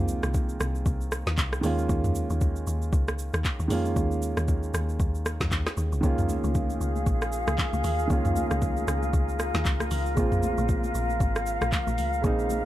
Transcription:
Already playing: C2 D#3 G#3 A#3 C4 F4
0.08 shaker
0.23 C2, cross-stick, shaker
0.34 kick, shaker
0.49 shaker
0.60 C2, cross-stick, shaker
0.75 shaker
0.86 C2, kick, shaker
1.01 shaker
1.12 cross-stick, shaker
1.27 D#2, snare, shaker
1.38 C2, kick, clap, shaker
1.53 cross-stick, shaker
1.61 D#2 D#3 G#3 A#3 C#4, open hi-hat, shaker
1.66 F4
1.78 shaker
1.89 D#2, kick, shaker
2.04 mid tom, shaker
2.15 shaker
2.30 D#2, shaker
2.41 kick, shaker
2.56 shaker
2.67 D#2, shaker
2.82 shaker
2.93 C#2, kick, shaker
3.08 cross-stick, shaker
3.19 shaker
3.34 D#2, cross-stick, shaker
3.44 kick, clap, shaker
3.60 D#2, shaker
3.68 F2 D#3 G#3 A#3 C#4, open hi-hat, shaker
3.73 F4
3.85 shaker
3.96 D#2, kick, shaker
4.11 shaker
4.22 shaker
4.37 D#2, cross-stick, shaker
4.48 kick, shaker
4.63 shaker
4.74 D#2, cross-stick, shaker
4.89 shaker
5.00 D#2, kick, shaker
5.15 shaker
5.26 cross-stick, shaker
5.41 F2, kick, snare, shaker
5.51 D#2, kick, clap, shaker
5.67 cross-stick, snare, shaker
5.77 D#2, shaker
5.92 C#2, shaker
6.01 C#2 D#3 G#3 A#3 C#4 F4 G#4 A#4 F5, kick, shaker
6.06 F4
6.18 mid tom, shaker
6.29 high conga, shaker
6.44 C#2, high conga, shaker
6.55 kick, low conga, shaker
6.70 high conga, shaker
6.81 C#2, shaker
6.96 high conga, shaker
7.06 A#1, kick, shaker
7.22 cross-stick, shaker
7.32 shaker
7.47 C#2, cross-stick, high conga, shaker
7.58 kick, clap, low conga, shaker
7.73 C#2, high conga, shaker
7.84 D#2, open hi-hat, high conga, low conga, shaker
7.99 shaker
8.08 C#2 D#3 G#3 A#3 C#4, kick, shaker
8.13 F4
8.25 mid tom, shaker
8.36 high conga, shaker
8.51 C#2, cross-stick, high conga, shaker
8.62 kick, low conga, shaker
8.77 high conga, shaker
8.88 C#2, cross-stick, shaker
9.03 high conga, shaker
9.13 C#2, kick, shaker
9.29 shaker
9.39 cross-stick, shaker
9.54 D#2, snare, high conga, shaker
9.65 C#2, kick, clap, low conga, shaker
9.80 cross-stick, high conga, shaker
9.91 C#2, open hi-hat, high conga, low conga, shaker
10.06 shaker
10.15 A#1 C#3 G#3 A#3 C4 F5, kick, shaker
10.19 F4
10.32 mid tom, shaker
10.43 high conga, shaker
10.58 A#1, high conga, shaker
10.69 kick, low conga, shaker
10.83 high conga, shaker
10.95 A#1, shaker
11.10 high conga, shaker
11.20 G#1, kick, shaker
11.36 cross-stick, shaker
11.46 shaker
11.61 A#1, cross-stick, high conga, shaker
11.72 kick, clap, low conga, shaker
11.87 A#1, high conga, shaker
11.98 C#2, open hi-hat, high conga, low conga, shaker
12.13 shaker
12.21 A#1 C#3 G#3 A#3 C4, kick, shaker
12.26 D#4
12.39 shaker
12.50 high conga, shaker

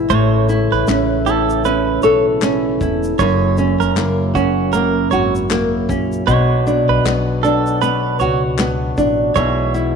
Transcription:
Already playing: B2 E3 B3 E4 G#4
0.10 A1 A2 C#3 A3 C#5, kick, shaker
0.49 E4, shaker
0.71 A1 B4, snare
0.87 A1 C#4, snare, clap, shaker
1.26 E4 A4, shaker
1.50 shaker
1.65 C#4 B4, shaker
2.02 B1 A4 C#5, shaker
2.42 C#4, snare, clap, shaker
2.81 E1 E4, kick, shaker
3.03 shaker
3.19 F#1 F#2 F#3 A#3 C#5, kick, shaker
3.57 C#4, shaker
3.80 F#1 A#4, snare, shaker
3.96 F#1 A#3, snare, clap, shaker
4.35 C#4 F#4, kick, shaker
4.73 A#3 A#4, shaker
5.11 G#1 F#4 C#5, shaker
5.35 shaker
5.50 A#3, snare, clap, shaker
5.89 A#1 C#4, kick, shaker
6.12 shaker
6.27 B1 B2 B3 D4 F#4 C#5, kick, shaker
6.67 D4, shaker
6.88 B1 B4
7.04 B1 B3, snare, clap, shaker
7.43 D4 A4, shaker
7.67 shaker
7.82 B3 B4, shaker
8.20 C#2 F#4 C#5, shaker
8.58 B3, snare, clap, shaker
8.98 A1 D4, kick, shaker
9.36 B1 B2 E3 G#3 E4 C#5, kick, shaker
9.74 E4, shaker

